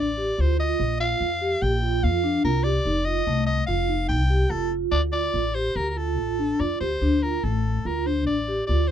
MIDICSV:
0, 0, Header, 1, 4, 480
1, 0, Start_track
1, 0, Tempo, 414651
1, 919, Time_signature, 5, 2, 24, 8
1, 10318, End_track
2, 0, Start_track
2, 0, Title_t, "Soprano saxophone"
2, 0, Program_c, 0, 64
2, 0, Note_on_c, 0, 74, 58
2, 468, Note_on_c, 0, 72, 62
2, 486, Note_off_c, 0, 74, 0
2, 682, Note_off_c, 0, 72, 0
2, 689, Note_on_c, 0, 75, 67
2, 1128, Note_off_c, 0, 75, 0
2, 1162, Note_on_c, 0, 77, 82
2, 1875, Note_on_c, 0, 79, 69
2, 1892, Note_off_c, 0, 77, 0
2, 2352, Note_on_c, 0, 77, 78
2, 2369, Note_off_c, 0, 79, 0
2, 2824, Note_off_c, 0, 77, 0
2, 2831, Note_on_c, 0, 70, 69
2, 3049, Note_on_c, 0, 74, 75
2, 3066, Note_off_c, 0, 70, 0
2, 3531, Note_on_c, 0, 75, 82
2, 3548, Note_off_c, 0, 74, 0
2, 3998, Note_off_c, 0, 75, 0
2, 4005, Note_on_c, 0, 75, 71
2, 4235, Note_off_c, 0, 75, 0
2, 4240, Note_on_c, 0, 77, 70
2, 4696, Note_off_c, 0, 77, 0
2, 4729, Note_on_c, 0, 79, 72
2, 5213, Note_on_c, 0, 69, 65
2, 5230, Note_off_c, 0, 79, 0
2, 5457, Note_off_c, 0, 69, 0
2, 5686, Note_on_c, 0, 74, 66
2, 5798, Note_off_c, 0, 74, 0
2, 5931, Note_on_c, 0, 74, 68
2, 6419, Note_on_c, 0, 72, 63
2, 6437, Note_off_c, 0, 74, 0
2, 6666, Note_on_c, 0, 70, 59
2, 6683, Note_off_c, 0, 72, 0
2, 6823, Note_off_c, 0, 70, 0
2, 6823, Note_on_c, 0, 70, 43
2, 6917, Note_on_c, 0, 69, 59
2, 6934, Note_off_c, 0, 70, 0
2, 7641, Note_on_c, 0, 74, 60
2, 7658, Note_off_c, 0, 69, 0
2, 7870, Note_off_c, 0, 74, 0
2, 7877, Note_on_c, 0, 72, 63
2, 8363, Note_on_c, 0, 70, 63
2, 8380, Note_off_c, 0, 72, 0
2, 8614, Note_on_c, 0, 69, 58
2, 8631, Note_off_c, 0, 70, 0
2, 9105, Note_on_c, 0, 70, 58
2, 9123, Note_off_c, 0, 69, 0
2, 9331, Note_on_c, 0, 72, 59
2, 9349, Note_off_c, 0, 70, 0
2, 9560, Note_off_c, 0, 72, 0
2, 9567, Note_on_c, 0, 74, 60
2, 10013, Note_off_c, 0, 74, 0
2, 10031, Note_on_c, 0, 74, 67
2, 10273, Note_on_c, 0, 72, 61
2, 10290, Note_off_c, 0, 74, 0
2, 10318, Note_off_c, 0, 72, 0
2, 10318, End_track
3, 0, Start_track
3, 0, Title_t, "Vibraphone"
3, 0, Program_c, 1, 11
3, 202, Note_on_c, 1, 67, 52
3, 367, Note_off_c, 1, 67, 0
3, 440, Note_on_c, 1, 65, 54
3, 605, Note_off_c, 1, 65, 0
3, 678, Note_on_c, 1, 65, 50
3, 1007, Note_off_c, 1, 65, 0
3, 1159, Note_on_c, 1, 65, 55
3, 1487, Note_off_c, 1, 65, 0
3, 1637, Note_on_c, 1, 67, 58
3, 1966, Note_off_c, 1, 67, 0
3, 2115, Note_on_c, 1, 65, 57
3, 2279, Note_off_c, 1, 65, 0
3, 2353, Note_on_c, 1, 65, 60
3, 2517, Note_off_c, 1, 65, 0
3, 2588, Note_on_c, 1, 62, 54
3, 2752, Note_off_c, 1, 62, 0
3, 2826, Note_on_c, 1, 65, 60
3, 2990, Note_off_c, 1, 65, 0
3, 3066, Note_on_c, 1, 67, 55
3, 3230, Note_off_c, 1, 67, 0
3, 3312, Note_on_c, 1, 63, 60
3, 3473, Note_off_c, 1, 63, 0
3, 3549, Note_on_c, 1, 65, 51
3, 3711, Note_off_c, 1, 65, 0
3, 3788, Note_on_c, 1, 57, 63
3, 4114, Note_off_c, 1, 57, 0
3, 4262, Note_on_c, 1, 65, 63
3, 4426, Note_off_c, 1, 65, 0
3, 4500, Note_on_c, 1, 63, 54
3, 4831, Note_off_c, 1, 63, 0
3, 4974, Note_on_c, 1, 67, 53
3, 5142, Note_off_c, 1, 67, 0
3, 5223, Note_on_c, 1, 65, 55
3, 5388, Note_off_c, 1, 65, 0
3, 5453, Note_on_c, 1, 65, 52
3, 5786, Note_off_c, 1, 65, 0
3, 5936, Note_on_c, 1, 65, 48
3, 6268, Note_off_c, 1, 65, 0
3, 6419, Note_on_c, 1, 67, 51
3, 6751, Note_off_c, 1, 67, 0
3, 6903, Note_on_c, 1, 65, 50
3, 7070, Note_off_c, 1, 65, 0
3, 7147, Note_on_c, 1, 65, 53
3, 7314, Note_off_c, 1, 65, 0
3, 7396, Note_on_c, 1, 62, 51
3, 7562, Note_off_c, 1, 62, 0
3, 7638, Note_on_c, 1, 65, 55
3, 7805, Note_off_c, 1, 65, 0
3, 7890, Note_on_c, 1, 67, 48
3, 8053, Note_off_c, 1, 67, 0
3, 8120, Note_on_c, 1, 62, 55
3, 8287, Note_off_c, 1, 62, 0
3, 8370, Note_on_c, 1, 65, 51
3, 8535, Note_off_c, 1, 65, 0
3, 8621, Note_on_c, 1, 57, 54
3, 8948, Note_off_c, 1, 57, 0
3, 9090, Note_on_c, 1, 65, 55
3, 9255, Note_off_c, 1, 65, 0
3, 9326, Note_on_c, 1, 62, 50
3, 9657, Note_off_c, 1, 62, 0
3, 9815, Note_on_c, 1, 67, 52
3, 9978, Note_off_c, 1, 67, 0
3, 10046, Note_on_c, 1, 65, 55
3, 10212, Note_off_c, 1, 65, 0
3, 10318, End_track
4, 0, Start_track
4, 0, Title_t, "Upright bass"
4, 0, Program_c, 2, 32
4, 0, Note_on_c, 2, 33, 68
4, 353, Note_off_c, 2, 33, 0
4, 446, Note_on_c, 2, 38, 65
4, 828, Note_off_c, 2, 38, 0
4, 922, Note_on_c, 2, 34, 66
4, 1305, Note_off_c, 2, 34, 0
4, 1394, Note_on_c, 2, 41, 61
4, 1780, Note_off_c, 2, 41, 0
4, 1875, Note_on_c, 2, 34, 68
4, 2356, Note_on_c, 2, 41, 68
4, 2374, Note_off_c, 2, 34, 0
4, 2737, Note_off_c, 2, 41, 0
4, 2829, Note_on_c, 2, 36, 66
4, 3211, Note_off_c, 2, 36, 0
4, 3306, Note_on_c, 2, 29, 66
4, 3689, Note_off_c, 2, 29, 0
4, 3784, Note_on_c, 2, 36, 65
4, 4167, Note_off_c, 2, 36, 0
4, 4267, Note_on_c, 2, 29, 72
4, 4737, Note_on_c, 2, 36, 73
4, 4755, Note_off_c, 2, 29, 0
4, 5125, Note_off_c, 2, 36, 0
4, 5212, Note_on_c, 2, 29, 59
4, 5602, Note_off_c, 2, 29, 0
4, 5690, Note_on_c, 2, 38, 65
4, 6081, Note_off_c, 2, 38, 0
4, 6179, Note_on_c, 2, 33, 60
4, 6566, Note_off_c, 2, 33, 0
4, 6664, Note_on_c, 2, 38, 67
4, 7147, Note_off_c, 2, 38, 0
4, 7147, Note_on_c, 2, 33, 59
4, 7540, Note_off_c, 2, 33, 0
4, 7637, Note_on_c, 2, 41, 49
4, 7856, Note_off_c, 2, 41, 0
4, 7877, Note_on_c, 2, 38, 50
4, 8097, Note_off_c, 2, 38, 0
4, 8119, Note_on_c, 2, 38, 61
4, 8510, Note_off_c, 2, 38, 0
4, 8607, Note_on_c, 2, 33, 63
4, 8995, Note_off_c, 2, 33, 0
4, 9090, Note_on_c, 2, 38, 62
4, 9565, Note_off_c, 2, 38, 0
4, 9565, Note_on_c, 2, 33, 67
4, 9952, Note_off_c, 2, 33, 0
4, 10058, Note_on_c, 2, 38, 65
4, 10318, Note_off_c, 2, 38, 0
4, 10318, End_track
0, 0, End_of_file